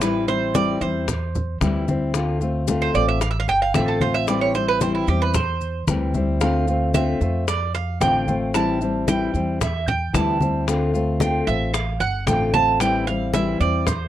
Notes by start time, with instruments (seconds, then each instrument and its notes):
Already playing: upright bass A1
0.01 steel-string acoustic guitar E3 G3 C4 E4, cuban tres B4, high bongo, high conga, maracas
0.28 steel-string acoustic guitar G3 C4 E4, cuban tres C5, high conga, maracas
0.54 steel-string acoustic guitar E3 G3 C4 E4, cuban tres D5, high bongo, high conga, maracas
0.81 upright bass E2, steel-string acoustic guitar G3 C4 E4, cuban tres C5, high conga, maracas
1.08 muted steel-string acoustic guitar stroke, high bongo, high conga, low conga, maracas
1.35 high conga, low conga, maracas
1.61 upright bass D2, steel-string acoustic guitar E3 G3 C4 E4, high bongo, low bongo, high conga, maracas
1.88 steel-string acoustic guitar G3 C4 E4, high conga, maracas
2.14 steel-string acoustic guitar D3 A3 C4 F4, high bongo, high conga, maracas
2.41 steel-string acoustic guitar A3 C4 F4, high conga, maracas
2.67 steel-string acoustic guitar D3 A3 C4 F4, high bongo, high conga, maracas
2.82 cuban tres C5
2.94 upright bass A1, steel-string acoustic guitar A3 C4 F4, cuban tres D5, high bongo, high conga, maracas
3.08 cuban tres E5
3.21 cuban tres F5, muted steel-string acoustic guitar stroke, high bongo, high conga, maracas
3.31 cuban tres E5
3.40 cuban tres F5
3.48 upright bass G1, cuban tres G5, high bongo, high conga, maracas
3.62 cuban tres F5
3.74 upright bass A1, steel-string acoustic guitar D3 A3 C4 F4, cuban tres E5, high bongo, low bongo, high conga, maracas
3.88 cuban tres A4
4.01 steel-string acoustic guitar A3 C4 F4, cuban tres C5, high bongo, high conga, maracas
4.14 cuban tres E5
4.28 steel-string acoustic guitar E3 G3 C4 E4, cuban tres D5, high bongo, high conga, maracas
4.41 cuban tres C#5
4.55 steel-string acoustic guitar G3 C4 E4, cuban tres C5, high conga, maracas
4.68 cuban tres B4
4.81 steel-string acoustic guitar E3 G3 C4 E4, cuban tres C5, high bongo, high conga, maracas
4.95 cuban tres E4
5.08 upright bass E2, steel-string acoustic guitar G3 C4 E4, cuban tres G4, high conga, maracas
5.22 cuban tres B4
5.34 cuban tres C5, muted steel-string acoustic guitar stroke, high bongo, high conga, low conga, maracas
5.61 high conga, maracas
5.87 upright bass D2, steel-string acoustic guitar E3 G3 C4 E4, high bongo, low bongo, high conga, maracas
6.14 steel-string acoustic guitar G3 C4 E4, high conga, maracas
6.41 steel-string acoustic guitar D3 A3 C4 F4, cuban tres F5, high bongo, high conga, maracas
6.67 steel-string acoustic guitar A3 C4 F4, high conga, maracas
6.94 steel-string acoustic guitar D3 A3 C4 F4, cuban tres E5, high bongo, high conga, maracas
7.21 upright bass F2, steel-string acoustic guitar A3 C4 F4, high bongo, high conga, maracas
7.48 cuban tres D5, muted steel-string acoustic guitar stroke, high bongo, high conga, maracas
7.75 cuban tres F5, high bongo, high conga, maracas
8.00 upright bass A1, steel-string acoustic guitar D3 A3 C4 F4, cuban tres G5, high bongo, low bongo, high conga, maracas
8.27 steel-string acoustic guitar A3 C4 F4, high bongo, high conga, maracas
8.54 steel-string acoustic guitar E3 G3 C4 E4, cuban tres A5, high bongo, high conga, maracas
8.81 steel-string acoustic guitar G3 C4 E4, high conga, maracas
9.07 steel-string acoustic guitar E3 G3 C4 E4, cuban tres G5, high bongo, high conga, maracas
9.34 upright bass E2, steel-string acoustic guitar G3 C4, high conga, maracas
9.61 cuban tres E5, muted steel-string acoustic guitar stroke, high bongo, high conga, low conga, maracas
9.88 cuban tres G5, high conga, low conga, maracas
10.13 upright bass D2, steel-string acoustic guitar E3 G3 C4 E4, cuban tres A5, high bongo, low bongo, high conga, maracas
10.40 steel-string acoustic guitar G3 C4 E4, high conga, maracas
10.67 steel-string acoustic guitar D3 A3 C4 F4, high bongo, high conga, maracas
10.94 steel-string acoustic guitar A3 C4 F4, high conga, maracas
11.20 steel-string acoustic guitar D3 A3 C4 F4, cuban tres G5, high bongo, high conga, maracas
11.47 upright bass A1, steel-string acoustic guitar A3 C4 F4, cuban tres E5, high bongo, high conga, maracas
11.74 cuban tres F5, muted steel-string acoustic guitar stroke, high bongo, high conga, maracas
12.00 upright bass G1, cuban tres F#5, high bongo, high conga, maracas
12.27 upright bass A1, steel-string acoustic guitar D3 A3 C4 F4, cuban tres G5, high bongo, low bongo, high conga, maracas
12.53 steel-string acoustic guitar A3 C4 F4, cuban tres A5, high bongo, high conga, maracas
12.80 steel-string acoustic guitar E3 G3 C4 E4, cuban tres G5, high bongo, high conga, maracas
13.07 steel-string acoustic guitar G3 C4 E4, cuban tres F5, high conga, maracas
13.33 steel-string acoustic guitar E3 G3 C4 E4, cuban tres E5, high bongo, high conga, maracas
13.60 upright bass E2, steel-string acoustic guitar G3 C4 E4, cuban tres D5, high conga, maracas
13.87 cuban tres C5, muted steel-string acoustic guitar stroke, high bongo, high conga, low conga, maracas